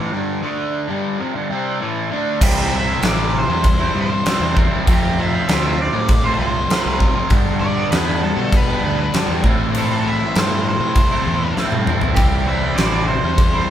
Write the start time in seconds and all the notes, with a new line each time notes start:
Already playing: A2
0.00 E3
0.12 G2 D3 G3
0.42 D3 A3 D4
0.88 G2 D3 G3
1.19 F2 C3
1.35 G2 D3
1.50 C3 G3 C4
1.81 A2 E3 A3
2.12 D3 A3 D4
2.41 C2 C3 E3 G3 C4 E4 G4, kick, crash
2.72 E3 G3 C4 E4 E5
2.87 G3 C4 E4
3.02 A1 C3 E3 G3 C4 E4, snare, crash
3.08 D5
3.18 G3 C4 E4
3.34 E3 G3 C4 E4, muted overdriven electric guitar stroke
3.39 C5
3.48 E2 G3 C4 E4, muted overdriven electric guitar stroke
3.64 kick, crash
3.79 G3 C4 E4
3.94 G2 E3 G3 C4 E4
4.01 C5
4.10 G3 C4 E4, muted overdriven electric guitar stroke
4.25 C3 E3 G3 C4 E4, snare, crash
4.40 E2
4.55 E3 G3 C4 E4, kick
4.70 G3 C4 E4
4.85 F2 C3 F3 A3 C4 F4, kick, crash
4.92 G4
5.17 F3 A3 C4 F4 E5
5.33 F3 A3 C4 F4
5.48 D2 F2 C3 F3 A3 C4 F4, snare, crash
5.62 A3 C4 F4
5.78 F3 A3 C4 F4 D5, muted overdriven electric guitar stroke
5.93 A2 A3 C4 F4, muted overdriven electric guitar stroke
6.09 kick, crash
6.24 F3 A3 C4 F4 C5
6.39 C2 F3 A3 C4 F4 C5
6.54 A3 C4 F4, muted overdriven electric guitar stroke
6.68 F2 C3 F3 A3 C4 F4, snare, crash
6.81 B4
6.86 C2
7.00 F3 A3 C4 F4, kick
7.13 F3 A3 C4 F4
7.30 G2 D3 G3 B3 D4 G4, kick, crash
7.61 D3 G3 B3 D4 D5
7.76 G3 B3 D4 G4
7.91 E2 G2 D3 G3 B3 D4 G4 B4, snare, crash
8.06 G3 B3 D4
8.22 G3 B3 D4 G4 A4, muted overdriven electric guitar stroke
8.36 B2 G3 B3 D4, muted overdriven electric guitar stroke
8.52 kick, crash
8.57 B4
8.68 G3 B3 D4 G4
8.83 D2 D3 G3 B3 D4
8.98 G3 B3 D4, muted overdriven electric guitar stroke
9.12 G2 D3 G3 B3 D4, snare, crash
9.18 G4
9.28 E2
9.43 A2 E3 A3 C4 E4, kick
9.57 A3 C4 E4
9.71 A2 E3 A3 C4 E4, crash
9.78 A4
10.02 E3 A3 C4 E4
10.08 E5
10.19 A3 C4 E4
10.32 G2 A2 E3 A3 C4 E4, snare, crash
10.38 C5
10.48 A3 C4 E4
10.65 E3 A3 C4 C5, muted overdriven electric guitar stroke
10.69 E4
10.80 C3 A3 C4 E4, muted overdriven electric guitar stroke
10.95 kick, crash
11.10 A3 C4 E4
11.25 E2 E3 A3 C4 E4
11.39 A3 C4 E4, muted overdriven electric guitar stroke
11.55 A2 E3 A3 C4 E4, snare
11.72 G2, high tom
11.86 E3 A3 C4 E4, mid tom
12.00 A3 C4 E4, floor tom
12.14 C2 C3 E3 G3 C4 E4 G4, kick, crash
12.46 E3 G3 C4 E4 E5
12.62 G3 C4 E4
12.76 A1 C3 E3 G3 C4 E4 D5, snare, crash
12.92 G3 C4 E4
13.07 E3 G3 C4 E4 C5, muted overdriven electric guitar stroke
13.23 E2 G3 C4 E4, muted overdriven electric guitar stroke
13.38 kick, crash
13.55 G3 C4 E4